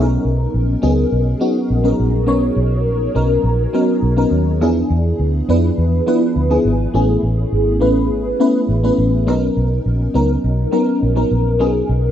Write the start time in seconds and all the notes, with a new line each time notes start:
Already playing: B1 F#3 B3 C#4 D#4
0.02 A#4
0.25 B1
0.54 A#1
0.82 C#2 F#3 B3 C#4 D#4 G#4
1.12 B1
1.40 F#3 B3 C#4 D#4 F#4
1.70 A#1
1.83 F#3 B3 C#4 D#4 A#4
2.00 A#1
2.26 B1 F#3 B3 C#4 D#4 C#5
2.56 B1
2.86 A#1
3.15 B1 F#3 B3 C#4 D#4 A#4
3.44 A#1
3.73 F#3 B3 C#4 D#4 A#4
4.03 B1
4.17 F#3 B3 C#4 D#4 A#4
4.31 D#2
4.61 E2 F3 B3 D4 E4 G#4
4.90 E2
5.19 D2
5.49 F2 F3 B3 D4 E4 B4
5.78 E2
6.07 F3 B3 D4 E4 B4
6.36 D2
6.50 F3 B3 D4 E4 G#4
6.65 G#1
6.94 A1 A3 B3 C#4 E4 G#4
7.23 A1
7.52 G#1
7.80 A1 A3 B3 C#4 E4 B4
8.11 G#1
8.40 A3 B3 C#4 E4 B4
8.69 A1
8.83 A3 B3 C#4 E4 B4
8.98 A1
9.27 B1 F#3 B3 C#4 D#4 A#4
9.57 B1
9.86 A#1
10.14 C#2 F#3 B3 C#4 D#4 A#4
10.44 B1
10.71 F#3 B3 C#4 D#4 A#4
11.03 A#1
11.15 F#3 B3 C#4 D#4 A#4
11.31 A#1
11.59 B1 F#3 B3 C#4 D#4 G#4
11.89 B1